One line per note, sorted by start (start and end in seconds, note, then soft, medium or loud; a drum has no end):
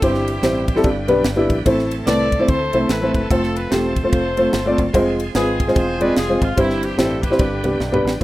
0.00 0.37 G1 medium
0.00 0.65 G2 medium
0.00 0.28 G3 medium
0.00 1.65 G3 medium
0.00 0.83 C4 medium
0.00 0.29 C4 medium
0.00 0.81 C4 medium
0.00 0.29 E4 medium
0.00 0.81 E4 medium
0.00 1.64 G4 medium
0.00 0.85 G4 medium
0.00 0.29 C5 medium
0.00 kick loud
0.00 ride medium
0.04 0.85 E3 medium
0.14 snare soft
0.28 ride medium
0.43 0.78 A1 medium
0.43 0.63 G3 medium
0.43 0.63 C4 medium
0.43 0.64 E4 medium
0.43 0.64 C5 medium
0.43 snare medium
0.43 ride medium
0.68 kick medium
0.68 ride medium
0.76 0.84 G3 medium
0.76 0.84 C4 medium
0.76 0.85 E4 medium
0.76 0.85 A4 loud
0.76 snare soft
0.84 1.05 G1 loud
0.84 1.46 G2 medium
0.84 1.66 D3 medium
0.84 1.65 B3 medium
0.84 kick loud
0.84 ride medium
1.08 1.23 B1 medium
1.08 1.22 G3 medium
1.08 1.22 B3 medium
1.08 1.22 D4 medium
1.08 1.22 B4 medium
1.08 ride medium
1.24 1.46 G1 medium
1.24 snare loud
1.24 ride medium
1.36 1.54 G3 medium
1.36 1.55 B3 medium
1.36 1.55 D4 medium
1.36 1.55 E4 medium
1.50 1.64 A#1 medium
1.50 kick medium
1.50 ride medium
1.65 2.01 A1 medium
1.65 2.28 A2 medium
1.65 3.28 E3 medium
1.65 4.90 A3 medium
1.65 1.92 A3 medium
1.65 1.92 C4 medium
1.65 7.35 C4 medium
1.65 1.92 E4 medium
1.65 4.90 A4 medium
1.65 1.93 C5 medium
1.65 kick loud
1.65 ride medium
1.79 snare soft
1.91 ride medium
2.06 2.42 C2 medium
2.06 2.27 A3 medium
2.06 2.27 C4 medium
2.06 2.28 E4 medium
2.06 2.47 A4 medium
2.06 2.28 B4 medium
2.06 2.45 D5 loud
2.06 snare loud
2.06 ride medium
2.32 kick medium
2.32 ride medium
2.39 2.55 A3 medium
2.39 2.55 C4 medium
2.39 2.56 E4 medium
2.39 2.56 C5 medium
2.48 2.70 D2 medium
2.48 3.27 E4 medium
2.48 3.26 A4 medium
2.48 2.89 C5 loud
2.48 kick loud
2.48 ride medium
2.73 2.87 C2 medium
2.73 2.86 A3 medium
2.73 2.86 C4 medium
2.73 2.87 E4 medium
2.73 2.87 C5 medium
2.73 ride medium
2.89 3.10 A1 medium
2.89 3.13 B4 medium
2.89 snare loud
2.89 ride medium
3.01 3.19 A3 medium
3.01 3.19 C4 medium
3.01 3.19 E4 medium
3.01 3.20 C5 medium
3.14 3.28 F#1 loud
3.14 3.29 B4 medium
3.14 kick medium
3.14 ride medium
3.31 3.65 F1 loud
3.31 6.54 F3 medium
3.31 3.56 A3 medium
3.31 3.56 C4 medium
3.31 4.09 C4 medium
3.31 3.70 F4 medium
3.31 3.57 F4 medium
3.31 3.55 A4 medium
3.31 3.57 C5 medium
3.31 kick loud
3.31 ride medium
3.43 snare soft
3.55 3.71 B4 medium
3.55 ride medium
3.71 4.06 E1 medium
3.71 3.91 A3 medium
3.71 3.91 C4 medium
3.71 4.11 F4 medium
3.71 3.91 F4 medium
3.71 3.92 G4 medium
3.71 4.11 A4 medium
3.71 4.11 C5 medium
3.71 snare loud
3.71 ride medium
3.96 kick medium
3.96 ride medium
4.04 4.19 A3 medium
4.04 4.20 C4 medium
4.04 4.20 F4 medium
4.04 4.20 C5 medium
4.12 4.47 F1 medium
4.12 4.90 F4 medium
4.12 4.90 A4 medium
4.12 4.74 C5 medium
4.12 kick loud
4.12 ride medium
4.37 4.50 A3 medium
4.37 4.50 C4 medium
4.37 4.50 F4 medium
4.37 4.51 C5 medium
4.37 ride medium
4.53 4.74 G1 medium
4.53 snare loud
4.53 ride medium
4.66 4.83 A3 medium
4.66 4.83 C4 medium
4.66 4.83 F4 medium
4.66 4.84 D5 medium
4.78 4.92 F#1 medium
4.78 kick loud
4.78 ride medium
4.93 5.29 F1 loud
4.93 6.55 G#3 medium
4.93 5.20 G#3 medium
4.93 5.20 C4 medium
4.93 5.20 F4 medium
4.93 6.55 G#4 medium
4.93 5.20 C5 medium
4.93 kick loud
4.93 ride medium
5.20 ride medium
5.35 5.70 G#1 medium
5.35 5.55 G#3 medium
5.35 5.55 C4 medium
5.35 6.13 C4 medium
5.35 5.55 F4 medium
5.35 5.76 F4 medium
5.35 5.73 G#4 loud
5.35 5.55 B4 medium
5.35 snare loud
5.35 ride medium
5.60 kick medium
5.60 ride medium
5.67 5.83 G#3 medium
5.67 5.83 C4 medium
5.67 5.83 F4 medium
5.67 5.84 C5 medium
5.67 snare soft
5.76 6.11 E1 loud
5.76 6.42 F4 medium
5.76 6.17 G#4 medium
5.76 6.01 C5 loud
5.76 kick loud
5.76 ride medium
6.00 6.13 G#3 medium
6.00 6.14 C4 medium
6.00 6.14 F4 medium
6.00 6.18 B4 loud
6.00 6.14 D5 medium
6.00 ride medium
6.17 6.38 F1 medium
6.17 6.40 G#4 loud
6.17 snare loud
6.17 ride medium
6.28 6.46 G#3 medium
6.28 6.46 C4 medium
6.28 6.46 F4 medium
6.28 6.47 C5 medium
6.41 6.55 G#1 loud
6.41 6.58 F4 medium
6.41 kick loud
6.41 ride medium
6.56 6.92 G1 loud
6.56 7.19 G2 medium
6.56 7.38 E3 medium
6.56 6.83 G3 medium
6.56 7.35 G3 medium
6.56 8.19 G3 medium
6.56 6.83 C4 medium
6.56 7.35 C4 medium
6.56 6.83 E4 medium
6.56 8.20 G4 medium
6.56 6.83 C5 medium
6.56 kick loud
6.56 ride medium
6.70 snare soft
6.83 6.99 G4 medium
6.83 ride medium
6.97 7.33 A1 medium
6.97 7.18 G3 medium
6.97 7.18 C4 medium
6.97 7.18 E4 medium
6.97 7.23 A4 medium
6.97 7.18 C5 medium
6.97 snare loud
6.97 ride medium
7.22 8.00 D4 medium
7.22 8.00 G4 medium
7.22 7.80 B4 medium
7.22 kick medium
7.22 ride medium
7.31 7.39 G3 medium
7.31 7.39 C4 medium
7.31 7.39 E4 medium
7.31 7.40 C5 medium
7.31 snare soft
7.39 7.60 G1 loud
7.39 8.01 G2 medium
7.39 8.21 D3 medium
7.39 8.21 B3 medium
7.39 kick loud
7.39 ride medium
7.64 7.78 C2 medium
7.64 7.77 G3 medium
7.64 7.77 B3 medium
7.64 7.77 D4 medium
7.64 7.77 B4 medium
7.64 ride medium
7.80 8.01 B1 medium
7.80 snare medium
7.92 8.10 G3 medium
7.92 8.10 B3 medium
7.92 8.10 D4 medium
7.92 8.10 B4 medium
7.92 mid tom medium
8.05 8.18 A1 medium
8.05 snare loud
8.20 8.24 A3 medium